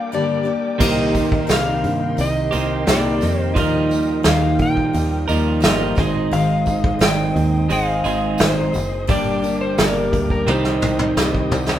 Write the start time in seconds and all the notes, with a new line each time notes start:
Already playing: G3 A#3 D4 G4 A#4 D5 G5 D6
0.12 G2 D3 G3 A#3 D4 G4 D5
0.43 G3 A#3 D4 G4
0.79 C2 C3 D#3 G3 A#3 C4 D#4 G4 D#5 C6, kick, crash
1.14 A#3 D#4 G4, kick, open hi-hat, tambourine
1.32 kick
1.47 C2 C3 G3 A#3 D#4 G4, snare, open hi-hat, tambourine
1.52 F5
1.84 G2, open hi-hat
2.17 C2 G3 A#3 D#4 G4 D#5, open hi-hat, tambourine
2.52 C2 C3 D#3 A#3 C4 D#4 G4, open hi-hat, tambourine
2.87 C2 C3 D#3 G3 A#3 C4 D#4 G4 D5, snare, open hi-hat, tambourine
3.21 F2 D#4 G4, snare, open hi-hat, tambourine
3.26 A#3
3.42 C5
3.56 D#2 D#3 F3 G3 A#3 D#4 G4 A#4 D#5 F5 D#6, kick, open hi-hat
3.89 A#3 D#4 G4, open hi-hat, tambourine
4.23 D#2 D#3 F3 A#3 D#4 G4, snare, open hi-hat, tambourine
4.28 F5
4.59 A#2 G5, kick, open hi-hat
4.77 kick
4.93 D#2 F3 A#3 D#4 G4, open hi-hat, tambourine
5.28 D#2 D#3 F3 G3 A#3 D#4 G4 A#4, open hi-hat, tambourine
5.60 G1 D#3 F3 G3 A#3 D#4 G4, snare, open hi-hat, tambourine
5.66 A#4 D#5
5.95 G#1 G#2 D#3 G#3 C4 D#4 G#4 C5 D#5, kick, snare, open hi-hat, tambourine
6.00 G#4
6.31 G#1 G#2 D#3 G#3 C4 D#4 G#4 F5, open hi-hat
6.66 G#3 C4 D#4 G#4, kick, open hi-hat, tambourine
6.84 kick
6.99 G#1 G#2 D#3 G#3 C4 D#4 G#4 G5, snare, open hi-hat, tambourine
7.36 D#2, open hi-hat
7.69 G#1 G#2 D#3 G#3 C4 F5, open hi-hat, tambourine
7.73 D#4 G#4
8.04 G#1 G#2 D#3 G#3 C4 D#4 G#4, open hi-hat, tambourine
8.38 G#1 G#2 D#3 G#3 C4 D#4 G#4 C5, snare, open hi-hat, tambourine
8.73 F#1 G#3 C4 D#4 G#4, open hi-hat, tambourine
9.07 G1 G2 D3 G3 A#3 D4 G4 A#4 D5 G5 D6, kick, open hi-hat, tambourine
9.42 G3 A#3 D4 G4, open hi-hat, tambourine
9.61 C5
9.78 G1 G2 D3 G3 A#3 D4 G4 A#4, snare, open hi-hat, tambourine
10.13 D2, kick, open hi-hat, tambourine
10.30 A#4, kick
10.47 C2 C3 D#3 G3 C4 D#4 G4 C5 D#5 D#6, high tom, tambourine
10.65 snare
10.80 C2 C4 D#4 G4, mid tom, tambourine
10.99 mid tom
11.17 C2 C3 G3 C4 D#4 G4, snare, tambourine
11.35 kick
11.51 C2 C4 D#4 G4, floor tom, tambourine
11.69 snare